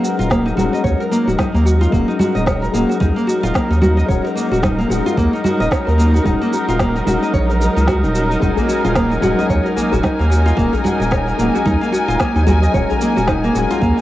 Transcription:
Already playing: F#3 G#3 C#4 D#4 A#4
0.04 F#4, shaker
0.19 D#1 F4, shaker
0.30 A#3, kick, snare, shaker
0.46 D#4, shaker
0.55 D#1 G#3 C#4 F#4, low conga, shaker
0.60 F#3
0.73 D#5, shaker
0.84 D#2 C#5, kick, shaker
1.00 A#4, shaker
1.11 A#3, shaker
1.27 D#1 F#4, shaker
1.38 D#4, kick, snare, low conga, shaker
1.54 D#2 A#3, shaker
1.65 F#4, shaker
1.81 F4, shaker
1.90 D#1 G#3 A#3 C#4, kick, shaker
1.94 F#3
2.08 D#4, shaker
2.19 F#4, low conga, shaker
2.35 D#1 D#5, shaker
2.46 C#5, kick, snare, shaker
2.62 A#4, shaker
2.72 D#1 F#3 G#3 A#3 C#4, shaker
2.89 F#4, shaker
3.00 D#2 D#4, kick, low conga, shaker
3.16 A#3, shaker
3.27 F#4, shaker
3.43 D#1 F4, shaker
3.54 A#3, kick, snare, shaker
3.71 D#2 D#4, shaker
3.82 F#4, low conga, shaker
3.97 D#5, shaker
4.06 D#1 G#3 C#4 C#5, kick, shaker
4.10 F#3
4.25 A#4, shaker
4.35 A#3, shaker
4.52 D#1 F#4, shaker
4.63 D#4, kick, snare, low conga, shaker
4.79 A#3, shaker
4.88 D#1 F#3 G#3 C#4 F#4, shaker
5.06 F4, shaker
5.17 D#2 A#3, kick, shaker
5.33 D#4, shaker
5.44 F#4, low conga, shaker
5.60 D#1 D#5, shaker
5.71 C#5, kick, snare, shaker
5.87 D#2 A#4, shaker
5.98 A#3, shaker
6.14 F#4, shaker
6.23 D#1 F#3 G#3 C#4 D#4, kick, low conga, shaker
6.41 A#3, shaker
6.53 F#4, shaker
6.68 D#1 F4, shaker
6.79 A#3, kick, snare, shaker
6.96 D#4, shaker
7.04 D#1 F#3 G#3 C#4 F#4, low conga, shaker
7.23 D#5, shaker
7.34 A#1 C#5, kick, shaker
7.50 A#4, shaker
7.61 A#4, shaker
7.77 C#2 D#4, shaker
7.88 F#4, kick, snare, low conga, shaker
8.04 D#1 D#4, shaker
8.15 F#4, shaker
8.31 D#4, shaker
8.39 D#1 G#3 C#4 D#4 G#5, kick, low conga, shaker
8.44 F#3
8.57 A#3, djembe bass, shaker
8.68 F#4, shaker
8.84 D#1 F4, djembe tone, shaker
8.96 A#3, kick, snare, djembe slap, shaker
9.11 D#4, djembe slap, shaker
9.20 D#1 G#3 C#4 F#4, low conga, shaker
9.25 F#3
9.39 D#5, djembe slap, shaker
9.50 D#2 C#5, kick, shaker
9.66 A#4, djembe tone, shaker
9.76 A#3, djembe tone, shaker
9.92 D#1 F#4, djembe bass, shaker
10.03 D#4, kick, snare, low conga, shaker
10.19 D#2 A#3, shaker
10.30 F#4, shaker
10.46 F4, djembe slap, shaker
10.56 D#1 F#3 G#3 A#3 C#4, kick, shaker
10.73 D#4, djembe bass, shaker
10.84 F#4, low conga, shaker
11.00 D#1 D#5, shaker
11.11 C#5, kick, snare, djembe slap, shaker
11.27 A#4, djembe slap, djembe tone, shaker
11.37 D#1 G#3 A#3 C#4, shaker
11.41 F#3
11.54 F#4, djembe slap, shaker
11.65 D#2 D#4, kick, djembe tone, low conga, shaker
11.81 A#3, djembe tone, shaker
11.92 F#4, djembe slap, shaker
12.08 D#1 F4, shaker
12.19 A#3, kick, snare, shaker
12.36 D#2 D#4, shaker
12.47 F#4, djembe bass, low conga, shaker
12.63 D#5, shaker
12.72 D#1 G#3 C#4 C#5, kick, shaker
12.76 F#3
12.90 A#4, djembe bass, shaker
13.01 A#3, shaker
13.16 D#1 F#4, shaker
13.28 D#4, kick, snare, djembe slap, low conga, shaker
13.44 A#3, djembe slap, shaker
13.53 D#1 G#3 C#4 F#4, shaker
13.57 F#3
13.70 F4, djembe slap, shaker
13.81 D#2 A#3, kick, shaker
13.97 D#4, djembe tone

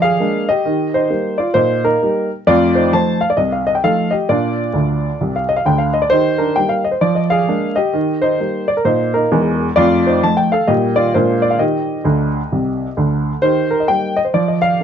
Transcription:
Already playing: F3 D#5
0.02 G#4 F5
0.20 G#3 A#3 D4
0.49 G4 D#5
0.65 D#3 G4
0.94 D#4 C5
1.10 G3 A#3 D#4
1.38 F4 D5
1.54 A#2 D#4 C5
1.84 D#4 A#4
2.02 G3 A#3 D#4
2.47 F2 A3 F4 D5
2.75 D#4 C5
2.93 F3 A3 D#4 C5 A5
3.21 F5
3.30 D5
3.37 C2 D#5
3.52 F5
3.67 D#5
3.75 G5
3.84 F3 A3 D#4 A4 F5
4.11 G4 D#5
4.29 A#2 D4 F4 D5
4.73 D2 D3
5.21 C2 C3
5.36 F5
5.49 D#5
5.56 F5
5.65 D2 D3 G5
5.78 F5
5.94 D#5
6.02 D5
6.10 D#3 D#4 G4 C5
6.38 D4 A#4
6.56 G3 A#3 D#4 G5
6.69 F5
6.84 D#5
6.91 C5
7.01 F3 D5
7.15 D#5
7.30 G#4 F5
7.47 G#3 A#3 D4
7.76 G4 D#5
7.93 D#3 G4
8.22 D#4 C5
8.40 G3 A#3 D#4
8.68 D5
8.77 A#4
8.85 A#2 D#4 C5
9.14 D#4 A#4
9.32 E1 E2
9.76 F2 A3 F4 D5
10.07 D#4 C5
10.23 F3 A3 D#4 A5
10.37 G5
10.52 A4 F5
10.67 A#2 G3 A#3 D#4 G4 D#5
10.96 F4 D5
11.14 A#2 G#3 A#3 D4 F4 C5
11.42 D5
11.50 F5
11.59 D#3 G4 D#5
12.04 D2 D3
12.52 C2 C3
12.97 D2 D3
13.42 D#3 G4 C5
13.71 A#4
13.80 D#5
13.88 G3 A#3 D#4 G5
14.16 D#5
14.24 C5
14.34 F3 D5
14.48 D#5
14.62 F5
14.80 G#3

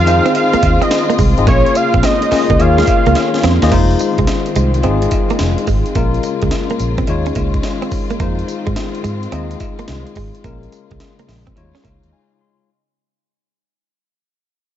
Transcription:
Already playing: D#3 G#3 C4 D#4 F4 G#4 D#5 F5
0.00 F2
0.06 C4 D#4 F4 G#4 C5, closed hi-hat, tambourine, cowbell
0.26 C4, closed hi-hat
0.35 F5, closed hi-hat, cowbell
0.53 A#3, muted fingered electric bass stroke, closed hi-hat
0.63 D#2, muted clean electric guitar stroke, kick, closed hi-hat, tambourine, cowbell
0.82 C4 D#5, closed hi-hat
0.91 muted clean electric guitar stroke, snare, closed hi-hat, tambourine, cowbell
1.10 A#3, closed hi-hat
1.19 C2 G#3, kick, open hi-hat, tambourine
1.38 G#1 C4 D#4 F4 G#4 D#5, closed hi-hat
1.47 A#1 C#3 G#3 A#3 C#4 C#5, kick, closed hi-hat, tambourine, cowbell
1.66 closed hi-hat
1.75 F5, muted clean electric guitar stroke, closed hi-hat, tambourine
1.94 A#1 C4, kick, closed hi-hat
2.03 C4 D#5, snare, closed hi-hat, tambourine, cowbell
2.22 muted clean electric guitar stroke, closed hi-hat
2.31 A#3 C#4 F4 G#4 D#5, muted fingered electric bass stroke, snare, open hi-hat, tambourine, cowbell
2.50 C#2 A#3, kick, closed hi-hat
2.59 D#2 D#3 A#3 C#4 D#4 F4 G#4 C#5 F5, closed hi-hat, cowbell
2.78 G#3, snare, closed hi-hat
2.87 muted clean electric guitar stroke, kick, closed hi-hat, tambourine, cowbell
3.06 C#2 A#3, closed hi-hat
3.15 muted clean electric guitar stroke, snare, closed hi-hat, cowbell
3.34 snare, closed hi-hat
3.43 F2 C4, snare, closed hi-hat
3.62 D#2 A#3 D#4 F4 G#4 D#5, snare, closed hi-hat
3.72 F1 D#3 G#3 A#3 C4 D#4 F4 C5, kick, closed hi-hat, crash, tambourine, cowbell
3.91 closed hi-hat
3.99 muted clean electric guitar stroke, closed hi-hat, tambourine
4.18 C2 G#3, kick, closed hi-hat
4.27 snare, closed hi-hat, tambourine, cowbell
4.46 closed hi-hat
4.55 C2 G#3, closed hi-hat, tambourine
4.74 closed hi-hat
4.83 G#1 G#3 C4 D#4 F4 G#4, closed hi-hat, cowbell
5.02 muted clean electric guitar stroke, closed hi-hat
5.11 kick, closed hi-hat, tambourine, cowbell
5.30 A#3, closed hi-hat
5.39 F1, snare, closed hi-hat, tambourine, cowbell
5.58 closed hi-hat
5.67 G#1 G#3, kick, open hi-hat, tambourine
5.86 closed hi-hat
5.95 A#1 C#3 G#3 A#3 C#4 F4 A#4, kick, closed hi-hat, tambourine, cowbell
6.14 closed hi-hat
6.23 muted clean electric guitar stroke, closed hi-hat, tambourine
6.42 C#2 G#3, kick, closed hi-hat
6.51 snare, closed hi-hat, tambourine, cowbell
6.70 A#3, closed hi-hat
6.79 A#1, muted clean electric guitar stroke, closed hi-hat, tambourine
6.98 C4, kick, closed hi-hat
7.07 D#2 D#3 G#3 C#4 D#4 F4 C#5, muted clean electric guitar stroke, closed hi-hat, cowbell
7.26 C#4, closed hi-hat
7.35 C#2 A#3, kick, closed hi-hat, tambourine, cowbell
7.54 kick, closed hi-hat
7.63 snare, closed hi-hat, tambourine, cowbell
7.82 C4, closed hi-hat
7.91 muted clean electric guitar stroke, kick, open hi-hat, tambourine
8.10 A#3, closed hi-hat
8.20 F2 G#3 A#3 C4 D#4 F4 C5, kick, closed hi-hat, tambourine, cowbell
8.39 closed hi-hat
8.48 muted clean electric guitar stroke, closed hi-hat, tambourine
8.67 G#2 G#3, kick, closed hi-hat
8.76 snare, closed hi-hat, tambourine, cowbell
8.95 closed hi-hat
9.04 G#2 G#3, closed hi-hat, tambourine
9.23 closed hi-hat
9.32 D#2 G#3 C4 D#4 F4 D#5, closed hi-hat, cowbell
9.51 muted clean electric guitar stroke, closed hi-hat
9.60 kick, closed hi-hat, tambourine, cowbell
9.79 A#3, closed hi-hat
9.88 C2, snare, closed hi-hat, tambourine, cowbell
10.07 closed hi-hat
10.15 G#1 G#3, kick, open hi-hat, tambourine
10.35 closed hi-hat
10.44 A#1 C#3 G#3 A#3 C#4 F4 A#4, kick, closed hi-hat, tambourine, cowbell
10.63 closed hi-hat
10.72 muted clean electric guitar stroke, closed hi-hat, tambourine
10.91 C#2 G#3, kick, closed hi-hat
11.00 snare, closed hi-hat, tambourine, cowbell
11.19 A#3, closed hi-hat
11.28 A#1, muted clean electric guitar stroke, snare, open hi-hat, tambourine, cowbell
11.47 C4, kick, closed hi-hat
11.56 D#2 G3 D#4 F4 C#5, muted clean electric guitar stroke, closed hi-hat, cowbell
11.63 G#3
11.75 C#4, snare, closed hi-hat
11.84 C#2 A#3 F5, kick, closed hi-hat, tambourine, cowbell
12.03 D#2, closed hi-hat
12.13 G#5
12.41 C6

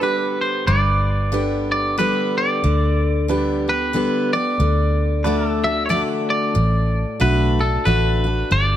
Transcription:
Already playing: G4 B4
0.01 D3 G3 B3 D4 G4 B4
0.41 C5
0.67 G1 G2 B4 D5
1.32 D3 G3 B3 D4 G4 B4
1.72 D5
1.98 D3 G3 B3 D4 G4 B4
2.38 D5
2.64 D2 D3
3.28 D3 G3 B3 D4 G4 B4
3.68 B3 G4 B4
3.93 D3 G3 B3 D4 G4 B4
4.33 B3 G4 D5
4.59 D2 D3
5.24 D3 A3 D4 F#4 A4 B4 D5
5.49 A4
5.63 D4 F#4 E5
5.86 D3 C#5
5.90 A3 D4 F#4 A4 D5 E5
6.30 D5
6.55 A1 A2
7.20 B1 D3 A3 D4 F#4 A4 B4 E5
7.59 D4 F#4 A4
7.85 A1 D3 A3 D4 F#4 A4 B4 D5
8.24 D4 F#4
8.51 G1 G2 D5

